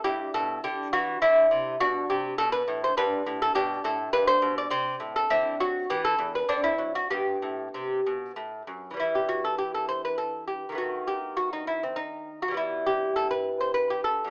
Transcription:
<<
  \new Staff \with { instrumentName = "Lute" } { \time 3/4 \key e \minor \tempo 4 = 102 g'8 a'8 g'8 fis'8 e'4 | \key g \major fis'8 g'8 a'16 b'8 c''16 b'8. a'16 | g'8 a'8 b'16 c''8 d''16 c''8. a'16 | e'8 fis'8 g'16 a'8 b'16 d'16 e'8 fis'16 |
g'2 r4 | \key e \minor e'16 g'16 fis'16 a'16 g'16 a'16 c''16 b'16 a'8 g'8 | fis'8 g'8 fis'16 dis'16 e'16 c'16 dis'8. fis'16 | e'8 g'8 a'16 b'8 c''16 b'16 g'16 a'8 | }
  \new Staff \with { instrumentName = "Lute" } { \clef bass \time 3/4 \key e \minor << { e'2. | \key g \major d'2 d'4 | d'2 c'4 | c'4 b4 c'4 |
b2. | \key e \minor <e g b>2. | <dis a b>2. | <e g b>2. | } \\ { g,8 b,8 d8 e8 d8 c8 | b,8 c8 b,8 a,8 g,8 a,8 | b,8 a,8 g,8 b,8 c8 a,8 | d8 fis8 e8 e,8 d8 fis8 |
g,8 a,8 c8 b,8 a,8 fis,8 | r2. | r2. | r2. | } >> }
>>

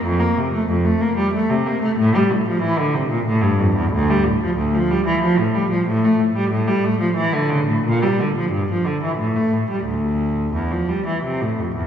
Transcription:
\new Staff \with { instrumentName = "Cello" } { \clef bass \time 3/4 \key f \major \tempo 4 = 92 f,16 bes16 c16 a16 f,16 a16 bes16 g16 a16 c16 bes16 a16 | a,16 g16 a,16 f16 e16 d16 c16 bes,16 a,16 g,16 f,16 e,16 | \key d \minor d,16 g16 a,16 f16 d,16 f16 g16 e16 f16 a,16 g16 f16 | a,16 a16 a,16 g16 a,16 g16 a16 f16 e16 d16 cis16 a,16 |
bes,16 g16 d16 f16 g,16 f16 d16 e16 a,16 a16 a,16 g16 | d,4 e,16 f16 g16 e16 c16 a,16 f,16 e,16 | }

